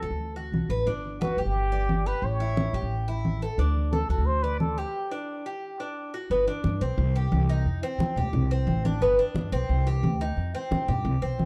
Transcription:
0.00 0.10 D2 medium
0.00 0.15 A4 loud
0.00 0.35 A4 medium
0.00 high conga soft
0.10 0.51 D2 medium
0.20 high conga soft
0.36 0.69 F#4 medium
0.36 high conga soft
0.52 0.68 B1 medium
0.52 high conga medium
0.69 0.85 A1 medium
0.69 0.87 B4 medium
0.69 high conga soft
0.86 1.35 G1 medium
0.86 1.20 D4 medium
0.86 high conga soft
1.05 high conga soft
1.21 1.40 F#4 medium
1.21 1.38 B4 medium
1.21 high conga medium
1.37 1.45 G1 medium
1.37 1.71 G4 medium
1.37 2.08 G4 medium
1.37 high conga soft
1.45 2.10 G1 medium
1.56 high conga soft
1.72 2.05 D5 medium
1.72 high conga soft
1.89 high conga medium
2.06 2.39 G4 medium
2.06 2.26 B4 medium
2.06 high conga soft
2.22 2.71 A1 medium
2.22 2.92 C#5 medium
2.22 high conga soft
2.40 2.73 E4 medium
2.40 high conga soft
2.57 high conga medium
2.73 2.81 A1 medium
2.73 3.07 G4 medium
2.73 high conga soft
2.82 3.47 A1 medium
2.92 high conga soft
3.08 3.41 E4 medium
3.08 high conga soft
3.25 high conga medium
3.42 3.58 A4 medium
3.42 high conga soft
3.58 4.07 D2 medium
3.58 3.92 D4 medium
3.58 high conga soft
3.76 high conga soft
3.93 4.08 A4 loud
3.93 4.09 A4 medium
3.93 high conga medium
4.09 4.17 D2 medium
4.09 4.43 F#4 medium
4.09 4.27 A4 medium
4.09 high conga soft
4.18 4.83 D2 medium
4.26 4.44 C5 loud
4.26 high conga soft
4.42 4.59 B4 loud
4.42 4.77 D5 medium
4.42 high conga soft
4.60 4.80 A4 medium
4.60 high conga medium
4.77 5.11 G4 medium
4.77 5.12 G4 medium
4.77 high conga soft
5.11 5.44 D4 medium
5.46 5.79 G4 medium
5.80 6.13 D4 medium
6.14 6.30 F#4 medium
6.30 6.46 G1 medium
6.30 6.47 B3 medium
6.30 high conga soft
6.47 6.80 D4 medium
6.47 high conga soft
6.64 6.80 G2 medium
6.64 high conga medium
6.81 6.97 B1 loud
6.81 7.14 C4 medium
6.81 high conga soft
6.98 7.30 C2 loud
6.98 high conga soft
7.15 7.48 G4 medium
7.15 high conga soft
7.32 7.64 C2 loud
7.32 high conga medium
7.49 7.82 D#4 medium
7.65 7.82 F2 medium
7.65 high conga soft
7.83 8.16 C4 medium
7.83 high conga soft
7.99 8.15 F3 loud
7.99 high conga medium
8.16 8.33 D2 medium
8.16 8.50 G4 medium
8.16 high conga soft
8.16 low conga medium
8.33 8.66 C2 loud
8.33 high conga soft
8.33 low conga medium
8.51 8.84 C4 medium
8.51 high conga soft
8.67 9.00 A1 loud
8.67 high conga medium
8.85 9.01 D4 medium
8.85 high conga medium
9.01 9.17 G1 medium
9.01 9.18 B3 medium
9.01 high conga soft
9.19 9.52 D4 medium
9.19 high conga soft
9.34 9.51 G2 loud
9.34 high conga medium
9.52 9.69 B1 loud
9.52 9.85 C4 medium
9.52 high conga soft
9.69 10.02 C2 loud
9.69 high conga soft
9.87 10.20 G4 medium
9.87 high conga soft
10.03 10.36 D2 loud
10.03 high conga medium
10.21 10.54 D#4 medium
10.37 10.53 F2 medium
10.37 high conga soft
10.55 10.88 C4 medium
10.55 high conga soft
10.71 10.87 F3 loud
10.71 high conga medium
10.88 11.04 G2 medium
10.88 11.21 G4 medium
10.88 high conga soft
10.88 low conga medium
11.05 11.21 C2 loud
11.05 high conga soft
11.22 11.37 B1 medium
11.22 11.45 C4 medium
11.22 high conga soft
11.39 11.45 A1 medium
11.39 high conga medium

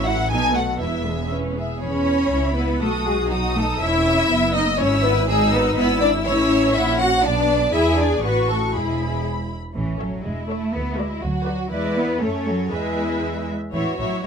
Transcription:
0.00 0.29 A1 medium
0.00 0.29 A2 medium
0.05 0.30 F#3 medium
0.05 0.30 E4 soft
0.05 0.30 F#4 medium
0.05 0.30 E5 medium
0.05 0.31 F#5 medium
0.30 0.80 B1 medium
0.30 0.80 B2 medium
0.30 0.52 B3 medium
0.30 0.53 D#4 medium
0.30 0.54 A4 soft
0.30 0.54 B4 soft
0.30 0.55 G#5 medium
0.54 0.80 A3 soft
0.54 0.78 B3 soft
0.54 0.81 F#4 soft
0.54 0.81 A4 soft
0.54 0.81 F#5 medium
0.80 1.61 E1 soft
0.80 1.61 E2 soft
0.80 1.04 B3 soft
0.80 1.04 E4 soft
0.80 1.05 B4 soft
0.80 1.31 E5 soft
1.05 1.31 G#3 soft
1.05 1.31 B3 soft
1.05 1.31 G#4 soft
1.05 1.31 E5 soft
1.30 1.54 C#4 soft
1.30 1.57 B4 soft
1.56 1.81 B3 soft
1.56 1.82 G#4 soft
1.56 1.83 E5 soft
1.82 2.29 E2 medium
1.82 2.52 C#4 medium
1.82 2.52 C#5 medium
1.82 2.78 B5 soft
2.32 2.81 C#2 soft
2.32 2.78 E4 medium
2.57 2.81 B3 medium
2.57 2.81 B4 medium
2.81 3.81 B1 medium
2.81 3.06 A3 medium
2.81 3.30 F#4 medium
2.81 3.06 A4 medium
2.81 3.30 D#6 medium
3.06 3.14 G#3 medium
3.06 3.31 G#4 medium
3.30 3.39 F#3 medium
3.30 3.81 D#4 medium
3.30 3.56 F#4 medium
3.30 3.81 D#6 medium
3.56 3.64 A3 medium
3.56 3.81 A4 medium
3.81 4.30 E1 medium
3.81 4.30 C#4 medium
3.81 4.54 E4 medium
3.81 4.54 E5 medium
3.81 4.79 E6 medium
4.31 4.79 F#1 medium
4.31 4.80 B3 medium
4.55 4.63 D#4 medium
4.55 4.79 D#5 medium
4.79 5.77 G#1 medium
4.79 5.04 C#4 medium
4.79 5.29 E4 medium
4.79 5.04 C#5 medium
4.79 5.28 E6 medium
5.04 5.13 B3 medium
5.04 5.29 B4 loud
5.29 5.53 G#3 medium
5.29 5.77 D#4 medium
5.29 5.53 G#4 medium
5.29 5.77 E6 medium
5.53 5.62 B3 medium
5.53 5.76 B4 medium
5.77 6.25 G#1 medium
5.77 6.02 B3 medium
5.77 6.75 E4 medium
5.77 6.01 B4 loud
5.77 6.26 E6 medium
6.00 6.10 D4 medium
6.00 6.08 D5 medium
6.25 6.75 A1 medium
6.25 6.74 C#4 medium
6.25 6.73 C#5 loud
6.25 6.74 E6 medium
6.74 7.24 A#1 medium
6.74 7.23 C#4 medium
6.74 6.99 E4 medium
6.74 6.99 E5 medium
6.74 7.24 F#5 medium
6.99 7.24 F#4 medium
6.99 7.23 F#5 loud
7.24 7.73 B1 medium
7.24 7.72 B3 medium
7.24 7.73 D4 medium
7.24 7.73 D5 loud
7.24 7.73 A5 medium
7.73 8.19 E2 medium
7.73 7.97 E4 medium
7.73 8.22 G#4 medium
7.73 7.98 E5 medium
7.73 8.20 G#5 soft
7.98 8.23 D4 medium
7.98 8.23 D5 medium
8.22 8.74 A1 medium
8.22 8.47 B3 medium
8.22 8.74 F#4 medium
8.22 8.48 B4 medium
8.22 8.74 C#6 medium
8.48 8.74 A3 medium
8.48 8.74 A4 medium
8.73 9.55 E1 medium
8.73 9.24 G#3 medium
8.73 9.51 E4 soft
8.73 9.24 G#4 medium
8.73 9.56 B5 soft
9.75 10.14 A1 medium
9.75 9.98 E3 medium
9.75 10.22 C#4 soft
9.99 10.24 F#3 soft
9.99 10.18 A4 soft
9.99 10.18 C#5 soft
9.99 10.19 E5 soft
10.24 10.64 E1 soft
10.24 10.49 G#3 medium
10.24 11.21 E4 soft
10.49 10.73 A3 medium
10.49 10.67 A4 soft
10.49 10.67 C#5 soft
10.49 10.68 E5 soft
10.73 11.13 D2 medium
10.73 10.98 B3 medium
10.97 11.22 G#3 medium
10.97 11.16 F#4 soft
10.97 11.16 B4 soft
10.97 11.17 D5 soft
11.22 11.62 D2 medium
11.22 11.72 F#3 medium
11.22 11.72 F#4 medium
11.46 11.65 F#4 soft
11.46 11.65 B4 soft
11.46 11.65 D5 soft
11.70 12.18 E2 medium
11.70 11.96 G#3 medium
11.70 12.17 E4 soft
11.70 12.20 E4 medium
11.70 12.17 B4 soft
11.70 12.18 D5 soft
11.97 12.22 B3 medium
12.20 12.72 F#2 soft
12.20 12.47 A3 medium
12.20 12.70 C#4 medium
12.20 12.72 A4 soft
12.20 12.72 C#5 soft
12.46 12.72 F#3 medium
12.72 13.53 E2 soft
12.72 13.47 G#3 medium
12.72 13.53 E4 soft
12.72 13.47 G#4 soft
12.72 13.53 B4 soft
12.72 13.54 E5 soft
13.74 13.82 A1 soft
13.74 13.97 E3 medium
13.74 13.98 E4 soft
13.74 14.20 F#4 soft
13.74 13.98 C#5 soft
13.74 13.97 E5 soft
13.98 14.07 A1 soft
13.98 14.23 F#3 soft
13.98 14.22 E4 soft
13.98 14.23 C#5 soft
13.98 14.23 E5 soft
14.23 14.27 E4 soft

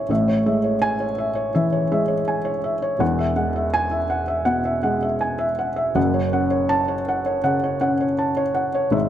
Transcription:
0.00 0.12 E3 medium
0.00 0.12 G#3 medium
0.00 0.12 C#5 medium
0.00 0.11 E5 medium
0.00 0.12 G#5 medium
0.09 1.51 A1 medium
0.09 1.51 A2 medium
0.09 0.39 E5 medium
0.28 0.57 C#5 medium
0.46 1.04 G#3 soft
0.46 0.75 E5 medium
0.64 0.93 C#5 medium
0.82 1.11 G#5 medium
1.00 1.29 C#5 medium
1.18 1.48 E5 medium
1.35 1.65 C#5 medium
1.55 2.13 E3 medium
1.55 1.84 E5 medium
1.72 2.02 C#5 medium
1.92 2.50 G#3 medium
1.92 2.21 E5 medium
2.08 2.38 C#5 medium
2.28 2.57 G#5 medium
2.45 2.75 C#5 medium
2.64 2.94 E5 medium
2.82 3.01 C#5 medium
2.99 4.43 E1 medium
2.99 4.43 E2 medium
2.99 3.30 F#5 medium
3.19 3.48 E5 medium
3.36 3.96 G#3 medium
3.36 3.66 F#5 medium
3.56 3.85 E5 medium
3.74 4.03 G#5 medium
3.91 4.21 E5 medium
4.10 4.40 F#5 medium
4.28 4.58 E5 medium
4.45 5.06 B2 medium
4.45 4.76 F#5 medium
4.65 4.95 E5 medium
4.83 5.44 G#3 medium
4.83 5.13 F#5 medium
5.03 5.33 E5 medium
5.21 5.51 G#5 medium
5.39 5.69 E5 medium
5.59 5.89 F#5 medium
5.76 5.96 E5 medium
5.95 7.41 F#1 medium
5.95 7.41 F#2 medium
5.95 6.26 F#5 medium
6.14 6.44 C#5 medium
6.33 6.93 C#4 medium
6.33 6.63 F#5 medium
6.50 6.81 C#5 medium
6.69 7.00 A5 medium
6.88 7.19 C#5 medium
7.08 7.38 F#5 medium
7.26 7.56 C#5 medium
7.44 8.04 C#3 medium
7.44 7.74 F#5 medium
7.64 7.94 C#5 medium
7.81 8.41 C#4 medium
7.81 8.12 F#5 medium
8.01 8.31 C#5 medium
8.19 8.49 A5 medium
8.37 8.67 C#5 medium
8.54 8.86 F#5 medium
8.75 8.94 C#5 medium
8.91 9.09 G#1 medium
8.91 9.09 G#2 medium
8.91 9.09 E5 medium

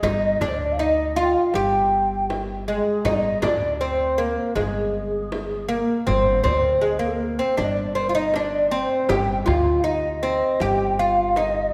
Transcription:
0.03 0.34 G1 medium
0.03 0.41 D#4 medium
0.03 0.43 D#5 medium
0.03 frame drum medium
0.41 1.34 D2 medium
0.41 0.79 D4 medium
0.41 0.50 D5 medium
0.41 frame drum medium
0.49 0.57 C5 medium
0.56 0.74 D5 medium
0.72 0.78 F5 medium
0.78 1.16 D#4 medium
0.78 1.19 D#5 medium
0.78 0.83 F5 medium
1.16 1.55 F4 medium
1.16 1.24 F5 medium
1.23 1.30 G5 medium
1.30 1.53 F5 medium
1.30 1.34 G5 medium
1.54 2.78 G1 medium
1.54 2.71 G4 medium
1.54 2.36 G5 medium
1.54 frame drum medium
2.30 frame drum medium
2.67 3.03 G#3 medium
2.67 3.07 G#4 medium
3.05 3.36 G1 medium
3.05 3.42 D#4 medium
3.05 3.14 D#5 medium
3.05 frame drum medium
3.12 3.21 D5 medium
3.19 3.44 D#5 medium
3.42 4.36 D2 medium
3.42 3.80 D4 medium
3.42 3.81 D5 medium
3.42 frame drum medium
3.80 4.20 C4 medium
3.80 4.16 C5 medium
4.16 4.55 A#3 medium
4.16 4.58 A#4 medium
4.16 4.21 C5 medium
4.55 5.80 G1 medium
4.55 5.68 G#3 medium
4.55 5.71 G#4 medium
4.55 frame drum medium
5.32 frame drum medium
5.69 6.08 A#3 medium
5.69 6.09 A#4 medium
6.07 6.38 G1 medium
6.07 6.42 C4 medium
6.07 6.47 C5 medium
6.07 frame drum medium
6.44 7.38 D2 medium
6.44 6.83 C4 medium
6.44 6.56 D5 medium
6.44 frame drum medium
6.55 6.64 C5 medium
6.63 6.73 A#4 medium
6.72 6.83 C5 medium
6.81 6.99 G#3 medium
6.81 7.02 G#4 medium
6.99 7.40 A#3 medium
6.99 7.40 A#4 medium
7.38 7.57 C4 medium
7.38 7.57 C5 medium
7.57 8.83 G1 medium
7.57 7.95 D4 medium
7.57 7.65 D5 medium
7.57 frame drum medium
7.64 7.72 D#5 medium
7.71 7.97 D5 medium
7.95 8.09 C4 medium
7.95 8.02 C5 medium
8.00 8.08 A#4 medium
8.07 8.14 F4 medium
8.07 8.18 C5 medium
8.15 8.34 D#4 medium
8.15 8.35 D#5 medium
8.34 8.71 D4 medium
8.34 8.41 D#5 medium
8.34 frame drum medium
8.40 8.72 D5 medium
8.71 9.07 C4 medium
8.71 9.12 C5 medium
9.09 9.41 G1 medium
9.09 9.45 G4 medium
9.09 9.48 G5 medium
9.09 frame drum medium
9.46 10.41 D2 medium
9.46 9.83 F4 medium
9.46 frame drum medium
9.78 9.88 F5 medium
9.84 10.22 D#4 medium
9.84 10.63 D#5 medium
10.23 10.61 C4 medium
10.60 11.73 G1 medium
10.60 10.99 G4 medium
10.60 11.01 G5 medium
10.60 frame drum medium
10.99 11.37 F4 medium
10.99 11.38 F5 medium
11.36 11.73 D#4 medium
11.36 11.73 D#5 medium
11.36 frame drum medium

